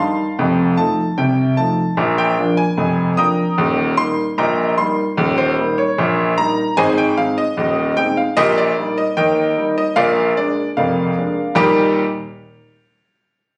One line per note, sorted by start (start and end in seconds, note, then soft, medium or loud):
0.00 0.20 D#3 medium
0.00 0.21 G3 medium
0.00 0.21 D#4 medium
0.00 0.75 F5 medium
0.00 0.75 A5 medium
0.00 0.74 C6 medium
0.39 0.73 F1 medium
0.39 0.73 F2 loud
0.77 1.00 F3 medium
0.77 1.00 A3 medium
0.77 1.00 D#4 medium
0.77 1.16 A5 loud
1.18 1.52 C2 medium
1.18 1.52 C3 medium
1.18 1.56 G5 medium
1.57 1.80 F3 soft
1.57 1.80 A3 medium
1.57 1.80 D#4 medium
1.57 1.96 A5 loud
1.97 2.32 A#1 loud
1.97 2.32 A#2 loud
2.18 2.56 G5 loud
2.38 2.60 F3 medium
2.38 2.61 A#3 medium
2.38 2.61 D4 medium
2.57 3.06 G#5 loud
2.77 3.12 F1 medium
2.77 3.12 F2 medium
3.17 3.40 F3 medium
3.17 3.40 A#3 medium
3.17 3.41 D4 medium
3.17 3.94 G5 medium
3.17 3.94 A#5 medium
3.17 3.94 D#6 loud
3.58 3.92 D#1 loud
3.58 3.92 D#2 loud
3.97 4.19 G3 medium
3.97 4.20 A#3 medium
3.97 4.20 D#4 medium
3.97 4.30 C6 loud
4.38 4.72 A#1 medium
4.38 4.72 A#2 medium
4.38 4.75 D#5 medium
4.38 4.75 G5 medium
4.38 4.70 A#5 medium
4.77 4.99 G3 medium
4.77 5.00 A#3 medium
4.77 5.00 D#4 medium
4.77 5.15 C6 loud
5.17 5.51 D#1 loud
5.17 5.51 D#2 loud
5.38 5.75 C5 loud
5.58 5.80 G3 medium
5.58 5.80 A#3 medium
5.58 5.80 D#4 medium
5.78 6.26 C#5 medium
5.98 6.32 A#1 loud
5.98 6.32 A#2 medium
6.38 6.60 G3 medium
6.38 6.60 A#3 medium
6.38 6.60 D#4 medium
6.38 6.75 A#5 loud
6.77 7.12 G#1 loud
6.77 7.11 G#2 loud
6.77 6.96 C5 loud
6.77 6.97 D#5 loud
6.77 6.97 G#5 loud
6.98 7.17 G5 loud
7.17 7.40 G#3 medium
7.17 7.40 C4 medium
7.17 7.40 D#4 medium
7.17 7.37 F5 loud
7.38 7.94 D#5 loud
7.57 7.91 D#1 loud
7.57 7.91 D#2 loud
7.97 8.19 G#3 medium
7.97 8.19 C4 medium
7.97 8.20 D#4 medium
7.97 8.17 G5 loud
8.17 8.37 F5 medium
8.37 8.71 A#1 loud
8.37 8.71 A#2 loud
8.37 8.56 G4 loud
8.37 8.56 A#4 loud
8.37 8.57 D#5 loud
8.58 8.95 D5 loud
8.78 9.00 G3 medium
8.78 9.00 A#3 medium
8.78 9.00 D#4 medium
8.98 9.17 D#5 loud
9.17 9.51 D#2 medium
9.17 9.51 D#3 medium
9.17 9.73 A#4 medium
9.17 9.73 D#5 medium
9.17 9.74 G5 loud
9.57 9.79 G3 medium
9.57 9.79 A#3 medium
9.57 9.80 D#4 medium
9.78 9.97 D#5 loud
9.96 10.30 A#1 loud
9.96 10.30 A#2 loud
9.96 10.34 A#4 medium
9.96 10.34 D5 medium
9.96 10.28 F5 loud
10.37 10.59 G#3 medium
10.37 10.59 A#3 medium
10.37 10.59 D4 medium
10.37 10.69 D5 loud
10.77 11.11 F1 medium
10.77 11.11 F2 medium
10.77 11.54 A#4 medium
10.77 11.54 D5 medium
10.77 11.53 F5 medium
11.17 11.39 G#3 soft
11.17 11.39 A#3 medium
11.17 11.40 D4 medium
11.55 12.01 D#2 loud
11.55 12.01 A#2 loud
11.55 12.01 G3 loud
11.55 12.01 A#3 loud
11.55 12.01 D#4 loud
11.55 12.01 G4 loud
11.55 12.01 D#5 medium